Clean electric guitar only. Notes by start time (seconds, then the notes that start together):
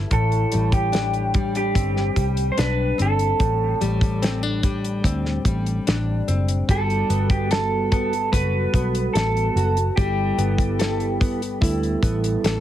0.13 A4
0.73 G4
1.57 G4
2.52 C5
2.59 B4
3.02 A4
6.71 A4
7.31 G4
7.51 A4
7.92 A4
8.32 B4
9.13 A4
9.96 G4